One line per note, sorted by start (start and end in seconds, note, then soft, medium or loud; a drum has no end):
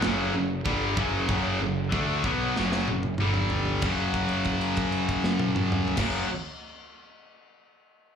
0.02 0.32 F#1 medium
0.02 0.33 F#2 medium
0.02 0.33 C#3 medium
0.02 0.34 F#3 loud
0.02 snare loud
0.02 china soft
0.34 0.63 F#1 medium
0.34 0.59 F#2 medium
0.34 0.59 C#3 medium
0.66 0.95 G1 loud
0.66 0.96 G2 medium
0.66 0.96 D3 medium
0.66 0.97 G3 loud
0.66 kick loud
0.66 china soft
0.97 1.26 F#1 medium
0.97 1.27 F#2 medium
0.97 1.28 C#3 medium
0.97 1.28 F#3 medium
0.97 kick loud
1.28 1.58 F#1 medium
1.28 1.59 F#2 loud
1.28 1.60 C#3 loud
1.28 1.60 F#3 loud
1.28 kick loud
1.28 china medium
1.60 1.90 F#1 medium
1.60 1.86 F#2 medium
1.60 1.86 C#3 medium
1.92 2.22 D2 medium
1.92 2.23 D3 medium
1.92 2.24 A3 medium
1.92 2.24 D4 medium
1.92 kick loud
1.92 china medium
2.24 2.53 B1 medium
2.24 2.55 B2 medium
2.24 2.55 F#3 medium
2.24 2.56 B3 medium
2.24 kick medium
2.56 2.86 F#1 medium
2.56 2.88 F#2 medium
2.56 2.88 C#3 medium
2.56 2.88 F#3 medium
2.56 snare medium
2.72 snare medium
2.88 3.18 F#1 medium
2.88 3.14 F#2 medium
2.88 3.14 C#3 medium
2.88 high tom medium
3.03 high tom medium
3.18 3.80 G1 medium
3.18 3.82 G2 medium
3.18 3.82 D3 loud
3.18 3.83 G3 loud
3.18 mid tom medium
3.34 mid tom medium
3.50 floor tom medium
3.65 floor tom medium
3.82 5.87 F#1 medium
3.82 5.96 F#2 medium
3.82 5.99 C#3 medium
3.82 kick medium
3.82 crash medium
3.87 6.00 F#3 medium
4.14 kick medium
4.14 crash soft
4.29 crash soft
4.44 kick medium
4.44 crash soft
4.61 crash soft
4.77 kick medium
4.77 crash soft
4.92 crash soft
5.08 kick medium
5.08 crash soft
5.24 snare medium
5.39 high tom medium
5.56 mid tom medium
5.72 mid tom medium
5.88 floor tom medium
5.96 6.25 F#1 medium
5.96 6.26 F#2 medium
5.96 6.27 C#3 medium
5.96 kick medium
5.96 snare medium
5.96 crash medium
6.01 6.28 F#3 medium